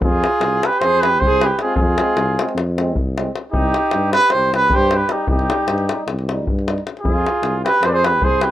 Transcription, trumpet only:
0.03 0.67 G#4 loud
0.66 0.82 B4 loud
0.81 1.03 C5 loud
1.01 1.22 B4 loud
1.20 1.44 C5 loud
1.42 1.59 B4 medium
1.61 1.77 G#4 medium
1.77 2.53 G#4 medium
3.52 4.10 G4 loud
4.12 4.33 B4 loud
4.32 4.53 C5 loud
4.55 4.77 B4 loud
4.75 4.98 C5 loud
4.96 5.13 B4 medium
5.12 5.28 G4 medium
5.31 6.05 G4 medium
7.00 7.59 G#4 medium
7.65 7.87 B4 loud
7.85 7.89 C5 loud
7.85 7.96 D5 medium
7.94 8.07 C5 loud
8.05 8.26 B4 loud
8.24 8.43 C5 medium
8.42 8.51 B4 medium

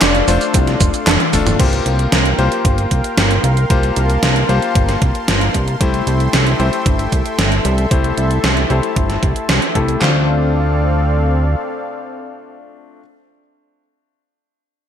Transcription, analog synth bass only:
0.01 0.23 F1 medium
0.28 0.39 F1 loud
0.54 0.76 C2 loud
0.81 0.91 F1 loud
1.07 1.18 F1 medium
1.33 1.55 F1 loud
1.60 1.81 C2 medium
1.86 2.07 C2 medium
2.12 2.34 C2 medium
2.39 2.49 C2 loud
2.65 2.86 G1 loud
2.91 3.02 C2 loud
3.17 3.39 G1 loud
3.44 3.65 C2 loud
3.70 3.92 C2 medium
3.97 4.18 C2 medium
4.23 4.44 C2 medium
4.49 4.60 C2 loud
4.75 4.97 G1 loud
5.02 5.13 C2 loud
5.28 5.50 G1 loud
5.54 5.76 C2 loud
5.81 6.02 C2 medium
6.07 6.29 C2 medium
6.33 6.55 C2 medium
6.60 6.70 C2 loud
6.86 7.07 G1 medium
7.12 7.23 C2 medium
7.39 7.60 G1 loud
7.65 7.87 C2 loud
7.91 8.13 C2 medium
8.18 8.39 C2 medium
8.44 8.65 C2 medium
8.70 8.81 C2 loud
8.96 9.18 G1 loud
9.23 9.34 C2 loud
9.49 9.60 C2 medium
9.75 9.97 C2 medium
10.02 11.56 D2 medium

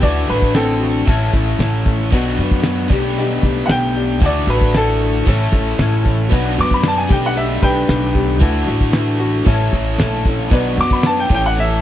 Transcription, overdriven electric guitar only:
0.01 1.05 D3 medium
0.01 1.06 D4 medium
0.01 1.07 F#4 medium
0.01 1.07 A4 loud
1.06 2.10 A2 medium
1.06 2.10 A3 medium
1.06 2.11 C#4 medium
1.06 2.11 E4 medium
1.06 2.12 A4 loud
2.11 2.89 B2 medium
2.11 2.89 F#3 medium
2.11 2.87 B3 medium
2.11 2.89 D4 medium
2.11 2.90 F#4 medium
2.11 2.90 B4 medium
2.88 4.19 B3 medium
2.88 4.20 D4 medium
2.88 4.20 G4 medium
2.88 4.21 B4 medium
4.20 5.25 D3 medium
4.20 5.25 D4 medium
4.20 5.25 F#4 loud
4.20 5.26 A4 medium
5.25 6.29 A2 medium
5.25 6.30 A3 medium
5.25 6.30 C#4 medium
5.25 6.31 E4 loud
5.25 6.31 A4 medium
6.30 7.08 B2 medium
6.30 7.08 F#3 medium
6.30 7.06 B3 medium
6.30 7.08 D4 medium
6.30 7.09 F#4 loud
6.30 7.09 B4 medium
7.07 8.39 B3 medium
7.07 8.39 D4 medium
7.07 8.40 G4 medium
7.12 8.41 B4 medium
8.40 9.44 D3 medium
8.40 9.44 D4 medium
8.40 9.45 F#4 loud
8.40 9.46 A4 loud
9.44 10.49 A2 medium
9.44 10.50 A3 medium
9.44 10.50 C#4 medium
9.44 10.50 E4 medium
9.49 10.51 A4 medium
10.50 11.28 B2 medium
10.50 11.29 F#3 loud
10.50 11.29 B3 loud
10.50 11.29 D4 medium
10.50 11.30 F#4 loud
11.29 11.81 A2 medium
11.29 11.81 E3 loud
11.29 11.81 A3 loud
11.29 11.81 C#4 loud
11.29 11.81 A4 loud

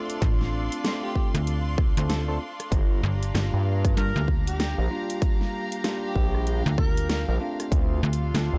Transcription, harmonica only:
1.03 1.11 G4 medium
1.16 1.28 G4 medium
2.09 2.21 A4 medium
2.28 2.36 A4 medium
3.97 4.25 A#4 loud
4.47 4.74 G4 medium
6.04 6.47 G4 loud
6.78 7.07 A#4 loud
7.09 7.22 A#4 medium
7.29 7.36 A#4 medium

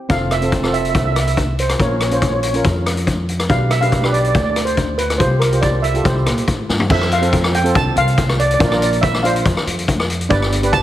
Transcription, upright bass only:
0.10 0.91 F1 loud
0.95 1.76 C2 medium
1.80 2.61 A#1 medium
2.65 3.46 F2 loud
3.50 4.31 B1 loud
4.35 5.16 D2 medium
5.20 6.01 C2 medium
6.05 6.25 C2 medium
6.27 6.46 A#2 medium
6.48 6.67 A2 medium
6.69 6.88 G2 medium
6.90 7.71 F2 loud
7.75 7.85 C2 loud
7.96 8.56 C2 medium
8.60 9.41 A#1 loud
9.45 9.56 F2 loud
9.66 10.26 F2 medium
10.30 10.83 G1 loud

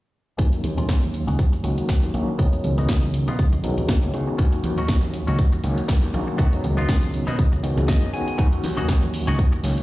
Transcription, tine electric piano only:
0.38 1.61 D#3 medium
0.38 1.61 F#3 medium
0.38 1.61 A#3 medium
0.38 1.61 C#4 medium
1.63 2.11 D#3 medium
1.63 2.11 F#3 medium
1.63 2.11 A#3 medium
1.63 2.11 C#4 medium
1.63 2.11 F#4 medium
2.14 2.36 D#3 medium
2.14 2.36 F#3 medium
2.14 2.36 A#3 medium
2.14 2.36 C#4 medium
2.14 2.37 F#4 medium
2.38 3.61 D#3 medium
2.38 3.62 F#3 medium
2.38 3.61 G#3 medium
2.38 3.61 B3 medium
2.38 3.62 C#4 medium
3.63 4.11 D#3 medium
3.63 4.11 F#3 medium
3.63 4.11 G#3 medium
3.63 4.11 B3 medium
3.63 4.11 C#4 medium
4.13 4.36 D#3 medium
4.13 4.36 G#3 medium
4.13 4.36 B3 medium
4.13 4.36 C#4 medium
4.13 4.36 F#4 medium
4.38 5.61 D#3 medium
4.38 5.61 C#4 medium
5.63 6.11 D#3 medium
5.63 6.11 F#3 medium
5.63 6.11 A#3 medium
5.63 6.11 C#4 medium
5.63 6.11 F#4 loud
6.13 6.36 D#3 medium
6.13 6.36 F#3 medium
6.13 6.36 A#3 medium
6.13 6.36 C#4 medium
6.13 6.36 F#4 medium
6.38 7.61 D#3 medium
6.38 7.62 F#3 loud
6.38 7.61 G#3 medium
6.38 7.61 B3 medium
6.38 7.61 C#4 medium
7.63 8.11 D#3 medium
7.63 8.11 G#3 medium
7.63 8.11 B3 medium
7.63 8.11 C#4 medium
7.63 8.11 F#4 loud
8.13 8.36 D#3 medium
8.13 8.36 G#3 medium
8.13 8.36 B3 medium
8.13 8.36 C#4 medium
8.13 8.36 F#4 medium
8.38 9.61 D#3 medium
8.38 9.61 F#3 medium
8.38 9.61 A#3 medium
8.38 9.61 C#4 medium
8.38 9.62 F#4 medium
9.64 9.83 D#3 medium
9.64 9.83 F#3 medium
9.64 9.83 A#3 medium
9.64 9.83 C#4 medium

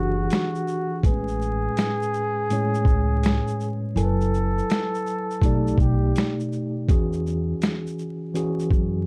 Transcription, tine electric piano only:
0.00 1.06 E3 medium
0.00 1.05 D4 medium
0.00 1.06 F#4 medium
0.00 1.05 G4 medium
0.00 1.05 G#4 loud
1.03 2.14 A2 medium
1.03 2.14 G#3 medium
1.03 1.13 B3 soft
1.03 2.15 B4 medium
1.11 2.18 C#4 medium
2.50 3.60 A2 medium
2.50 3.61 G#3 medium
2.50 3.61 C#4 medium
2.50 3.62 C#5 medium
3.95 5.06 F#3 medium
3.95 5.06 E4 medium
3.95 5.07 A4 medium
3.95 4.06 A#4 medium
3.95 5.07 G#5 medium
4.04 5.11 B4 medium
5.43 6.53 B2 medium
5.43 6.53 A3 medium
5.43 6.54 D#4 medium
5.43 6.54 G4 medium
5.43 6.54 D5 medium
6.88 7.99 E3 medium
6.88 7.99 C#4 medium
6.88 8.00 F#4 medium
6.88 8.00 G#4 loud
8.34 9.07 E3 medium
8.34 9.07 C#4 medium
8.34 9.07 F#4 medium
8.34 9.07 G#4 medium

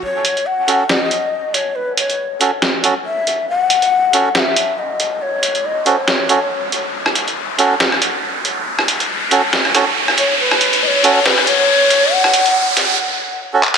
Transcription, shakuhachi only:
0.03 0.48 C#5 loud
0.46 0.88 F#5 loud
0.89 1.00 D5 loud
1.00 1.55 D#5 loud
1.54 1.77 C#5 medium
1.75 1.97 B4 medium
1.97 2.38 C#5 medium
3.06 3.46 E5 medium
3.49 4.31 F#5 loud
4.36 4.80 E5 loud
4.36 4.40 F#5 loud
4.78 5.23 D#5 medium
5.22 5.67 C#5 loud
5.65 5.88 D#5 medium
5.87 6.03 C5 medium
6.03 6.73 C#5 medium
10.18 10.38 C#5 medium
10.40 10.84 B4 medium
10.83 10.88 D#5 medium
10.87 11.27 C#5 medium
11.26 11.49 B4 medium
11.47 12.13 C#5 loud
12.12 12.77 F#5 loud

